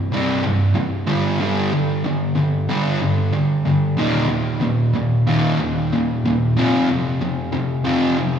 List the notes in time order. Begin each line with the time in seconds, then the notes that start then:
0.12 C2 G2 C3
0.45 C2 G2
0.75 C2 G2
1.07 G2 D3 G3
1.40 G2 D3 G3
1.72 G2 D3
2.05 G2 D3
2.36 G2 D3
2.69 G2 D3 G3
3.01 G2 D3
3.32 G2 D3
3.65 G2 D3
3.97 D#2 A#2 D#3
4.28 D#2 A#2
4.61 D#2 A#2
4.94 D#2 A#2
5.27 D#2 A#2 D#3
5.59 D#2 A#2
5.93 D#2 A#2
6.25 D#2 A#2
6.56 F2 C3 F3
6.90 F2 C3
7.21 F2 C3
7.53 F2 C3
7.85 F2 C3 F3
8.18 F2 C3